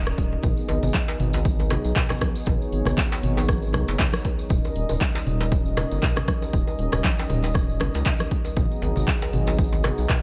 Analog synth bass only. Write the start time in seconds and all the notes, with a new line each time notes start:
Already playing: D#1
0.18 D#1
0.43 G#1
0.69 G#1
0.83 G#1
1.20 G#1
1.85 B1
2.47 G#1
2.72 G#1
2.86 G#1
3.23 G#1
3.74 B1
3.88 F#1
4.50 D#1
4.75 D#1
4.90 D#1
5.26 D#1
5.91 G1
6.53 D#1
6.79 D#1
6.93 D#1
7.30 D#1
7.80 G1
7.95 C#2
8.57 G#1
8.82 G#1
8.96 G#1
9.33 G#1
9.98 B1